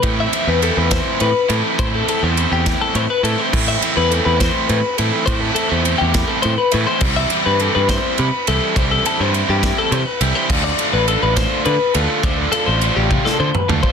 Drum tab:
CC |------------|------------|x-----------|------------|
RD |x-x-x-x-x-x-|x-x-x-x-x-x-|--x-x-x-x-x-|x-x-x-x-x-x-|
SD |------o-----|------o-----|------o-----|------o-----|
T1 |------------|------------|------------|------------|
T2 |------------|------------|------------|------------|
FT |------------|------------|------------|------------|
BD |o-----o-----|o-----o-----|o-----o-----|o-----o-----|

CC |x-----------|------------|x-----------|------------|
RD |--x-x-x-x-x-|x-x-x-x-x-x-|--x-x-x-x-x-|x-x-x-------|
SD |------o-----|------o-----|------o-----|-------o----|
T1 |------------|------------|------------|------o-----|
T2 |------------|------------|------------|---------o--|
FT |------------|------------|------------|----------o-|
BD |o-----o-----|o-----o-----|o-----o-----|o-----o----o|